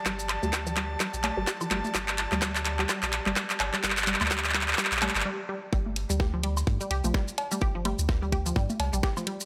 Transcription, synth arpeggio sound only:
X:1
M:4/4
L:1/16
Q:"Swing 16ths" 1/4=127
K:Gm
V:1 name="Synth arpeggio sound" clef=bass
G, z2 G, G F, G, z G, z2 G, G F, G, z | G, z2 G, G, z2 G, G, z2 G, G, z2 G, | G, z G, z G, z G, z G, z G, z G, z G, z | G, z2 G, G F, G, z2 G, G F, G, z2 G, |
G F, G, z2 G, G F, G, z2 G, G F, G, z |]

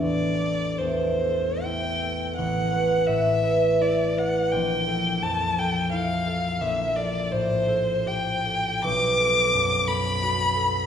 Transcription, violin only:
X:1
M:3/4
L:1/8
Q:1/4=84
K:Ador
V:1 name="Violin"
d2 c2 g2 | f2 e2 d f | g2 a g =f2 | e d c2 g2 |
d'3 b3 |]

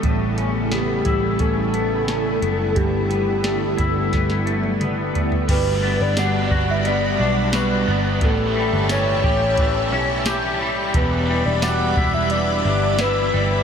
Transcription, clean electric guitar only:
X:1
M:4/4
L:1/8
Q:1/4=88
K:Glyd
V:1 name="Clean electric guitar"
A,, C B, E C B, C B, | G,, B, A, E B, A, B, A, | G, B, D F B, D F B, | A,, G, C G E, C G G, |
E,, G, D E E, D E G, |]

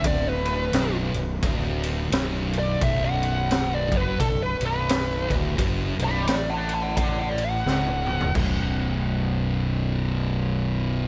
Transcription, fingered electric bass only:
X:1
M:4/4
L:1/8
Q:"Swing" 1/4=87
K:Bm
V:1 name="Fingered electric bass" clef=bass
D,,,2 B,,,, B,,,, D,,,2 B,,,,2 | B,,,,3 F,,, B,,,, B,,,,2 D,,, | F,,, B,,,, A,,,4 C,,,2 | B,,,,8 |]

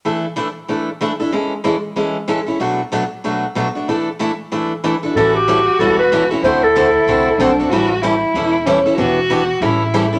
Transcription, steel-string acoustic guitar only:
X:1
M:4/4
L:1/8
Q:"Swing" 1/4=188
K:Emix
V:1 name="Steel-string acoustic guitar"
[E,A,DEA] z [E,A,DEA] z [E,A,DEA] z [E,A,DEA] [DEA] | [E,G,CEA] z [E,G,CEA] z [E,G,CEA] z [E,G,CEA] [CEA] | [B,,F,A,DF] z [B,,F,A,DF] z [B,,F,A,DF] z [B,,F,A,DF] [A,DF] | [E,A,DEA] z [E,A,DEA] z [E,A,DEA] z [E,A,DEA] [DEA] |
[K:Amix] [E,G,CEA] z [E,G,CEA] z [E,G,CEA] z [E,G,CEA] [CEA] | [D,A,=CFA] z [D,A,CFA] z [D,A,CFA] z [D,A,CFA] [CFA] | [E,G,CEA] z [E,G,CEA] z [E,G,CEA] z [E,G,CEA] [CEA] | [E,B,DG] z [E,B,DG] z [E,G,CEA] z [E,G,CEA] [CEA] |]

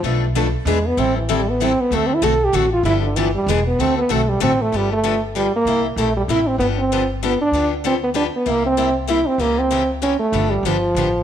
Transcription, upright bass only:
X:1
M:3/4
L:1/8
Q:"Swing" 1/4=192
K:Gmix
V:1 name="Upright bass" clef=bass
B,,,4 E,,2 | A,,,6 | D,,2 B,,,2 A,,,2 | G,,,4 E,,,2 |
D,,2 B,,,2 A,,,2 | G,,,6 | C,,2 _B,,,2 A,,,2 | G,,,6 |
D,,6 | C,,6 | ^C,,6 | G,,,2 G,,,2 A,,,2 |]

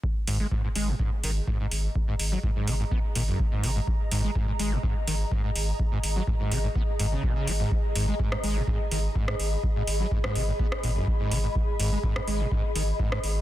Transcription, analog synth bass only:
X:1
M:4/4
L:1/8
Q:1/4=125
K:G#m
V:1 name="Analog synth bass" clef=bass
z G,,, z G,,, z G,,, z G,,, | z G,,, z G,,, z G,,, z G,,, | z G,,, z G,,, z G,,, z G,,, | z G,,, z G,,, z G,,, z G,,, |
z G,,, z G,,, z G,,, z G,,, | z G,,, z G,,, z G,,, z G,,, | z G,,, z G,,, z G,,, z G,,, |]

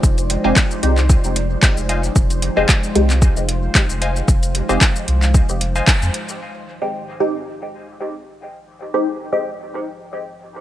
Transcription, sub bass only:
X:1
M:4/4
L:1/16
Q:"Swing 16ths" 1/4=113
K:Fdor
V:1 name="Sub bass" clef=bass
F,,,2 z F,,, z2 C,,2 z F,,,2 z2 F,,,2 z | F,,,2 z F,,, z2 C,,2 z F,,,2 z2 F,,,2 z | F,,,2 z F,,, z2 C,,2 z F,,,2 z2 F,, z2 | z16 |
z16 |]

